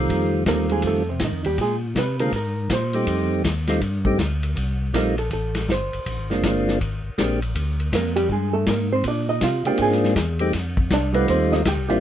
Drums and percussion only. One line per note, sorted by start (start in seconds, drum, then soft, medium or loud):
0.09 kick soft
0.09 ride medium
0.46 kick soft
0.46 snare medium
0.46 hi-hat pedal medium
0.46 ride medium
0.69 ride soft
0.82 kick soft
0.82 ride medium
1.20 kick soft
1.20 snare medium
1.20 hi-hat pedal medium
1.20 ride medium
1.44 ride soft
1.58 kick soft
1.58 ride medium
1.95 kick soft
1.95 snare medium
1.95 hi-hat pedal medium
1.95 ride medium
2.19 ride soft
2.33 kick soft
2.33 ride medium
2.70 kick soft
2.70 snare medium
2.70 hi-hat pedal medium
2.70 ride medium
2.93 ride soft
3.07 kick soft
3.07 ride medium
3.44 kick soft
3.44 snare medium
3.44 hi-hat pedal medium
3.44 ride medium
3.67 snare medium
3.67 ride soft
3.81 kick soft
3.81 ride medium
4.05 kick soft
4.19 kick soft
4.19 snare medium
4.19 hi-hat pedal medium
4.19 ride medium
4.43 ride soft
4.56 kick soft
4.56 ride medium
4.94 kick soft
4.94 snare medium
4.94 hi-hat pedal medium
4.94 ride medium
5.18 ride soft
5.31 kick soft
5.31 ride medium
5.55 snare soft
5.55 ride medium
5.69 kick soft
5.69 snare medium
5.69 hi-hat pedal medium
5.93 ride soft
6.06 kick soft
6.06 ride medium
6.30 snare soft
6.43 kick soft
6.43 snare medium
6.43 hi-hat pedal medium
6.43 ride medium
6.68 snare soft
6.81 kick soft
6.81 ride medium
7.18 kick soft
7.18 snare medium
7.18 hi-hat pedal medium
7.18 ride medium
7.42 ride soft
7.55 kick soft
7.55 ride medium
7.80 ride soft
7.93 kick soft
7.93 snare medium
7.93 hi-hat pedal medium
7.93 ride medium
8.16 ride medium
8.30 kick soft
8.66 kick soft
8.66 snare medium
8.66 hi-hat pedal medium
8.66 ride medium
9.04 kick soft
9.04 ride medium
9.41 kick soft
9.41 snare medium
9.41 hi-hat pedal medium
9.41 ride medium
9.65 ride soft
9.78 kick soft
9.78 ride medium
9.92 snare soft
10.04 snare soft
10.16 kick soft
10.16 snare medium
10.16 hi-hat pedal medium
10.16 ride medium
10.39 ride soft
10.53 kick soft
10.53 snare soft
10.53 ride medium
10.77 kick medium
10.90 kick soft
10.90 snare medium
10.90 hi-hat pedal medium
10.90 ride medium
11.14 ride soft
11.28 kick soft
11.28 ride medium
11.52 snare medium
11.65 kick soft
11.65 snare medium
11.65 hi-hat pedal medium
11.65 ride medium
11.90 ride soft